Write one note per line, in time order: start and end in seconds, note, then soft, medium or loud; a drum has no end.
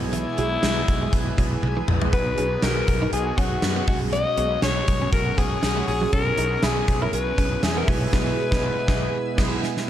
0.00 0.24 B1 medium
0.00 0.59 B2 medium
0.00 0.39 E3 soft
0.00 0.30 G#3 medium
0.00 0.30 B3 medium
0.00 0.39 B3 medium
0.00 0.30 E4 medium
0.00 0.36 E4 medium
0.00 0.30 G#4 medium
0.00 9.90 G#4 medium
0.00 2.11 B4 medium
0.00 2.09 G#5 medium
0.13 0.21 E3 medium
0.13 1.59 E4 loud
0.13 closed hi-hat medium
0.27 muted clean electric guitar stroke soft
0.37 0.56 B1 loud
0.37 0.46 F#3 medium
0.37 0.80 G#3 medium
0.37 0.80 B3 medium
0.37 1.14 B3 soft
0.37 1.13 E4 medium
0.37 0.80 E4 medium
0.37 0.80 G#4 medium
0.37 closed hi-hat medium
0.63 0.81 B1 loud
0.63 0.71 G#3 medium
0.63 snare loud
0.63 closed hi-hat medium
0.77 muted clean electric guitar stroke soft
0.87 1.06 B1 medium
0.87 1.70 G#3 medium
0.87 1.71 B3 medium
0.87 1.71 E4 medium
0.87 1.71 G#4 medium
0.87 kick medium
0.87 closed hi-hat medium
1.02 1.08 G#3 medium
1.11 1.31 B1 loud
1.11 2.12 E3 medium
1.11 2.13 B3 medium
1.11 kick loud
1.11 closed hi-hat medium
1.17 2.15 E4 medium
1.38 1.56 B1 loud
1.38 1.46 F#3 medium
1.38 kick medium
1.38 closed hi-hat medium
1.63 1.81 B1 medium
1.63 high tom medium
1.77 1.83 E3 medium
1.88 2.06 A#1 medium
1.88 muted clean electric guitar stroke soft
1.88 mid tom loud
2.01 2.11 G#3 medium
2.01 2.08 G#3 medium
2.01 2.11 B3 medium
2.01 2.11 E4 medium
2.01 2.11 G#4 medium
2.01 floor tom loud
2.12 2.31 B1 loud
2.12 2.38 B2 medium
2.12 2.84 B2 medium
2.12 2.38 F#3 medium
2.12 2.34 B3 medium
2.12 2.21 B3 medium
2.12 2.36 B3 medium
2.12 2.34 D#4 medium
2.12 2.34 F#4 medium
2.12 2.34 G#4 medium
2.12 2.64 B4 loud
2.12 3.86 D#5 medium
2.12 3.86 F#5 medium
2.12 kick loud
2.12 closed hi-hat medium
2.27 muted clean electric guitar stroke soft
2.37 2.56 B1 loud
2.37 3.13 F#3 soft
2.37 3.13 B3 medium
2.37 2.80 B3 medium
2.37 2.46 C#4 medium
2.37 2.80 D#4 medium
2.37 2.80 F#4 medium
2.37 2.80 G#4 medium
2.37 closed hi-hat medium
2.62 2.81 B1 medium
2.62 2.71 D#4 medium
2.62 3.12 A#4 medium
2.62 snare loud
2.62 closed hi-hat medium
2.77 muted clean electric guitar stroke soft
2.87 3.06 B1 medium
2.87 3.70 B3 medium
2.87 3.71 D#4 medium
2.87 3.71 F#4 medium
2.87 3.71 G#4 medium
2.87 kick medium
2.87 closed hi-hat medium
3.02 3.08 D#4 medium
3.12 3.31 B1 loud
3.12 3.87 B2 medium
3.12 3.89 F#3 medium
3.12 3.88 B3 medium
3.12 3.39 G#4 medium
3.12 closed hi-hat medium
3.38 3.56 B1 medium
3.38 3.46 C#4 medium
3.38 3.87 F#4 medium
3.38 kick medium
3.38 closed hi-hat medium
3.62 3.81 F#2 medium
3.62 muted clean electric guitar stroke soft
3.62 snare loud
3.62 closed hi-hat medium
3.76 3.83 B3 medium
3.87 4.24 B1 medium
3.87 4.59 B2 medium
3.87 4.39 F#3 soft
3.87 4.30 G#3 medium
3.87 3.96 G#3 medium
3.87 4.30 C#4 medium
3.87 4.39 C#4 medium
3.87 4.36 F#4 medium
3.87 3.99 F#4 medium
3.87 4.30 F#4 medium
3.87 4.30 G#4 medium
3.87 6.10 C#5 medium
3.87 6.11 F#5 medium
3.87 6.10 C#6 medium
3.87 kick loud
3.87 open hi-hat medium
4.13 4.21 F#3 medium
4.13 4.59 D#5 loud
4.13 closed hi-hat medium
4.27 muted clean electric guitar stroke soft
4.37 4.56 B1 medium
4.37 4.80 G#3 medium
4.37 4.46 B3 medium
4.37 4.80 C#4 medium
4.37 5.14 C#4 soft
4.37 5.12 F#4 medium
4.37 4.80 F#4 medium
4.37 4.80 G#4 medium
4.37 closed hi-hat medium
4.62 4.81 B1 loud
4.62 4.71 C#4 medium
4.62 5.09 C#5 loud
4.62 snare loud
4.62 closed hi-hat medium
4.77 muted clean electric guitar stroke soft
4.87 5.06 B1 loud
4.87 5.70 G#3 medium
4.87 5.70 C#4 medium
4.87 5.71 F#4 medium
4.87 5.71 G#4 medium
4.87 kick medium
4.87 closed hi-hat medium
5.02 5.08 C#4 medium
5.11 5.31 B1 loud
5.11 6.12 F#3 medium
5.11 6.13 C#4 medium
5.11 5.39 A#4 loud
5.11 kick loud
5.11 closed hi-hat medium
5.17 6.15 F#4 medium
5.38 5.56 B1 medium
5.38 5.46 B3 medium
5.38 5.87 G#4 loud
5.38 kick medium
5.38 closed hi-hat medium
5.63 5.81 B1 medium
5.63 snare loud
5.63 closed hi-hat medium
5.77 5.83 G#3 medium
5.87 6.06 A#1 medium
5.87 6.11 G#4 medium
5.87 muted clean electric guitar stroke soft
5.87 open hi-hat medium
6.01 6.08 F#3 medium
6.01 6.11 G#3 medium
6.01 6.11 C#4 medium
6.01 6.11 F#4 medium
6.01 6.11 G#4 medium
6.12 6.31 B1 loud
6.12 6.84 B2 medium
6.12 6.38 C#3 medium
6.12 6.38 G#3 medium
6.12 6.33 B3 medium
6.12 6.34 C#4 medium
6.12 6.21 C#4 medium
6.12 6.36 C#4 medium
6.12 6.34 E4 medium
6.12 6.34 G#4 medium
6.12 6.64 A#4 loud
6.12 7.86 C#5 medium
6.12 9.90 E5 medium
6.12 9.90 G#5 medium
6.12 kick loud
6.12 closed hi-hat medium
6.27 muted clean electric guitar stroke soft
6.37 6.56 B1 loud
6.37 7.13 G#3 soft
6.37 6.79 B3 medium
6.37 7.13 C#4 medium
6.37 6.80 C#4 medium
6.37 6.46 D#4 medium
6.37 6.80 E4 medium
6.37 6.80 G#4 medium
6.37 closed hi-hat medium
6.63 6.81 B1 loud
6.63 6.71 E4 medium
6.63 7.03 G#4 medium
6.63 snare loud
6.63 closed hi-hat medium
6.77 muted clean electric guitar stroke soft
6.87 7.06 B1 loud
6.87 7.70 B3 medium
6.87 7.70 C#4 medium
6.87 7.71 E4 medium
6.87 7.71 G#4 medium
6.87 kick medium
6.87 closed hi-hat medium
7.02 7.08 E4 medium
7.02 7.12 A#4 medium
7.12 7.31 B1 loud
7.12 7.88 C#3 medium
7.12 7.89 G#3 medium
7.12 7.88 C#4 medium
7.12 7.65 B4 loud
7.12 closed hi-hat medium
7.38 7.56 B1 medium
7.38 7.46 C#4 medium
7.38 kick medium
7.38 closed hi-hat medium
7.63 7.81 E2 medium
7.63 7.79 G#4 medium
7.63 muted clean electric guitar stroke soft
7.63 snare loud
7.63 closed hi-hat medium
7.77 7.83 B3 medium
7.77 7.90 A#4 medium
7.87 8.06 B1 medium
7.87 8.11 B2 medium
7.87 8.14 E3 medium
7.87 8.11 G#3 medium
7.87 7.96 G#3 medium
7.87 8.11 B3 medium
7.87 8.13 B3 medium
7.87 8.12 E4 medium
7.87 7.95 F#4 medium
7.87 9.90 B4 medium
7.87 9.88 B4 loud
7.87 kick loud
7.87 open hi-hat medium
7.94 8.16 G#4 medium
8.12 8.31 B1 loud
8.12 8.30 B2 medium
8.12 8.31 E3 loud
8.12 8.30 G#3 loud
8.12 8.30 B3 medium
8.12 8.31 B3 medium
8.12 8.30 E4 loud
8.12 8.31 E4 medium
8.12 kick loud
8.12 snare loud
8.12 crash medium
8.19 8.34 G#4 loud
8.51 8.69 B1 loud
8.51 8.68 G#3 loud
8.51 8.68 B3 loud
8.51 8.70 B3 loud
8.51 8.68 E4 loud
8.51 8.69 B4 loud
8.51 kick loud
8.51 snare loud
8.87 9.06 B1 loud
8.87 9.05 E3 loud
8.87 9.05 G#3 loud
8.87 9.05 B3 loud
8.87 9.07 B3 loud
8.87 9.06 E4 medium
8.87 9.06 G#4 medium
8.87 kick loud
8.87 snare loud
8.92 9.08 E4 loud
9.37 9.56 B1 medium
9.37 9.55 E3 medium
9.37 9.55 G#3 loud
9.37 9.55 B3 loud
9.37 9.56 B3 loud
9.37 9.56 E4 medium
9.37 9.56 G#4 loud
9.37 kick loud
9.37 snare loud
9.37 crash medium
9.42 9.58 E4 loud
9.63 snare medium
9.77 snare medium